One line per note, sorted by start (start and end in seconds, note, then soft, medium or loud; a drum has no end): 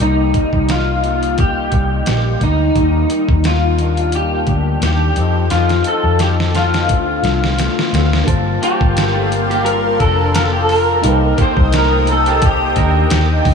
0.00 0.43 C2 medium
0.00 0.32 C3 medium
0.00 0.33 G3 medium
0.00 0.34 A#3 medium
0.00 0.72 D#4 medium
0.00 0.35 D#4 medium
0.33 1.02 C3 medium
0.33 1.04 G3 soft
0.33 1.05 A#3 medium
0.33 1.06 D#4 medium
0.33 kick medium
0.33 closed hi-hat medium
0.53 1.68 C2 medium
0.53 kick medium
0.69 1.35 F4 medium
0.69 snare loud
0.69 closed hi-hat medium
1.03 1.69 C3 medium
1.03 1.71 G3 medium
1.03 1.73 A#3 medium
1.03 1.74 D#4 medium
1.03 closed hi-hat medium
1.23 closed hi-hat soft
1.38 2.45 G4 medium
1.38 kick medium
1.38 closed hi-hat medium
1.70 2.00 C2 medium
1.70 2.05 C3 medium
1.70 2.06 G3 medium
1.70 2.07 A#3 medium
1.70 kick medium
1.70 closed hi-hat medium
1.74 2.07 D#4 medium
2.06 2.34 A#1 medium
2.06 2.39 C3 medium
2.06 2.41 G3 medium
2.06 2.42 A#3 medium
2.06 2.42 D#4 medium
2.06 snare loud
2.06 closed hi-hat medium
2.40 2.69 D2 medium
2.40 2.74 C3 medium
2.40 2.75 G3 medium
2.40 2.76 A#3 medium
2.40 3.49 D#4 medium
2.40 2.77 D#4 medium
2.40 kick medium
2.40 closed hi-hat medium
2.75 3.03 D#2 medium
2.75 3.08 D#3 medium
2.75 3.09 G3 medium
2.75 3.10 A#3 medium
2.75 kick medium
2.75 closed hi-hat medium
3.09 3.77 D#3 medium
3.09 3.78 G3 medium
3.09 3.79 A#3 medium
3.09 closed hi-hat medium
3.29 4.44 D#2 medium
3.29 kick medium
3.44 4.15 F4 medium
3.44 snare loud
3.44 closed hi-hat medium
3.78 4.53 D#3 medium
3.78 4.47 G3 medium
3.78 4.48 A#3 medium
3.78 4.49 D4 medium
3.78 closed hi-hat medium
3.97 closed hi-hat soft
4.12 4.79 G4 medium
4.12 closed hi-hat medium
4.47 4.75 D2 medium
4.47 4.81 G3 medium
4.47 4.82 A#3 medium
4.47 4.84 D4 medium
4.47 kick medium
4.47 closed hi-hat soft
4.80 5.09 D#2 medium
4.80 5.16 D#3 medium
4.80 5.15 G3 medium
4.80 5.16 A#3 medium
4.80 5.48 G4 medium
4.80 snare loud
4.80 closed hi-hat medium
4.85 5.17 D4 medium
5.15 5.44 F2 loud
5.15 5.49 F3 medium
5.15 5.50 C4 medium
5.15 5.51 D#4 medium
5.15 5.51 A4 medium
5.15 closed hi-hat medium
5.50 5.79 F2 medium
5.50 5.83 F3 medium
5.50 5.85 C4 medium
5.50 5.86 D#4 medium
5.50 5.83 F4 medium
5.50 5.86 A4 medium
5.50 snare medium
5.50 closed hi-hat medium
5.69 snare soft
5.69 closed hi-hat soft
5.84 6.52 F3 medium
5.84 6.53 C4 soft
5.84 6.54 D#4 medium
5.84 6.20 A4 medium
5.84 closed hi-hat medium
5.88 6.56 A4 medium
6.04 6.90 F2 loud
6.19 6.30 G4 medium
6.19 snare medium
6.19 closed hi-hat medium
6.40 snare medium
6.52 6.88 F3 medium
6.52 6.89 C4 medium
6.52 6.90 D#4 medium
6.52 7.55 F4 medium
6.52 snare medium
6.52 closed hi-hat medium
6.56 6.90 A4 medium
6.74 snare medium
6.74 closed hi-hat soft
6.88 7.17 D2 medium
6.88 7.21 D3 medium
6.88 7.23 A3 medium
6.88 7.24 C4 medium
6.88 7.25 F4 medium
6.88 kick medium
6.88 closed hi-hat medium
7.22 7.66 C2 medium
7.22 7.56 D3 medium
7.22 7.57 A3 medium
7.22 7.59 C4 medium
7.22 7.60 F4 medium
7.22 snare medium
7.22 closed hi-hat medium
7.44 snare medium
7.58 7.89 D3 medium
7.58 7.91 A3 medium
7.58 7.92 C4 medium
7.58 7.93 F4 medium
7.58 snare medium
7.58 closed hi-hat medium
7.79 snare medium
7.91 8.21 D2 medium
7.91 8.26 D3 medium
7.91 8.25 A3 medium
7.91 8.25 C4 medium
7.91 8.27 F4 medium
7.91 closed hi-hat medium
7.95 snare medium
8.13 snare medium
8.24 8.55 G1 medium
8.24 8.60 G3 medium
8.24 10.98 A#3 medium
8.24 8.61 C4 medium
8.24 10.99 F4 medium
8.24 11.00 A5 medium
8.24 kick medium
8.24 closed hi-hat medium
8.28 11.02 A#3 medium
8.28 8.62 F4 medium
8.28 8.62 A#4 medium
8.28 11.00 C5 medium
8.28 11.01 F5 medium
8.28 11.02 A5 medium
8.28 11.02 C6 medium
8.61 9.15 G3 medium
8.61 8.81 A#3 medium
8.61 9.15 C4 medium
8.61 9.14 F4 medium
8.61 8.80 G4 medium
8.61 9.64 G4 medium
8.61 9.12 A#4 medium
8.61 closed hi-hat medium
8.81 9.96 G1 loud
8.81 kick loud
8.97 snare loud
8.97 closed hi-hat medium
9.13 9.30 A3 medium
9.13 9.64 C4 soft
9.13 9.30 F4 medium
9.13 9.65 F4 soft
9.13 9.64 A#4 medium
9.32 closed hi-hat medium
9.50 9.65 A#3 medium
9.50 9.65 G4 medium
9.50 closed hi-hat soft
9.63 10.18 G3 medium
9.63 10.19 C4 medium
9.63 10.18 F4 medium
9.63 9.97 A#4 medium
9.63 closed hi-hat medium
9.67 10.15 A#4 medium
10.00 11.00 F1 medium
10.00 10.51 D4 medium
10.00 10.34 A4 medium
10.00 10.50 A#4 medium
10.00 kick medium
10.00 closed hi-hat medium
10.17 10.54 C4 soft
10.17 10.53 F4 medium
10.17 10.50 A#4 medium
10.34 10.43 A#4 medium
10.34 snare loud
10.34 closed hi-hat loud
10.43 10.52 A4 medium
10.52 11.03 F4 medium
10.52 10.61 G4 medium
10.52 11.03 A#4 soft
10.56 11.02 C4 soft
10.62 10.70 A4 medium
10.69 11.41 A#4 loud
10.69 open hi-hat soft
11.01 11.32 C2 medium
11.01 11.35 C3 medium
11.01 13.54 A#3 medium
11.01 11.36 A#3 medium
11.01 13.54 D#4 medium
11.01 11.37 D#4 medium
11.01 13.54 G4 medium
11.01 11.38 G4 medium
11.01 13.54 C5 medium
11.01 13.54 G5 medium
11.01 13.54 D#6 medium
11.01 closed hi-hat medium
11.07 11.12 B4 medium
11.13 13.54 C5 medium
11.37 11.91 C3 medium
11.37 11.91 A#3 medium
11.37 11.56 A#3 medium
11.37 11.90 D#4 medium
11.37 11.56 G4 medium
11.37 11.88 G4 medium
11.37 kick medium
11.37 closed hi-hat medium
11.42 11.75 C5 loud
11.57 12.72 C2 loud
11.57 kick loud
11.73 12.10 A#4 medium
11.73 snare loud
11.73 closed hi-hat medium
11.89 12.06 A3 medium
11.89 12.41 A#3 soft
11.89 12.41 D#4 medium
11.89 12.06 F4 medium
11.89 12.41 G4 medium
12.07 12.45 A4 medium
12.07 closed hi-hat medium
12.26 12.42 A#3 medium
12.26 12.41 G4 medium
12.26 closed hi-hat soft
12.41 12.95 C3 medium
12.41 12.95 A#3 medium
12.41 12.96 D#4 medium
12.41 12.93 G4 medium
12.41 kick loud
12.41 closed hi-hat medium
12.46 13.43 G4 medium
12.76 13.04 D#2 medium
12.76 13.27 D4 medium
12.76 13.26 A#4 medium
12.76 kick medium
12.76 closed hi-hat medium
12.95 13.30 D#4 soft
12.95 13.27 G4 medium
12.99 13.32 A#3 medium
13.10 13.38 D#2 medium
13.10 snare loud
13.10 closed hi-hat medium
13.29 13.54 D#4 medium
13.29 13.54 G4 medium
13.33 13.54 A#3 soft
13.45 13.54 D2 medium
13.45 kick medium
13.45 open hi-hat soft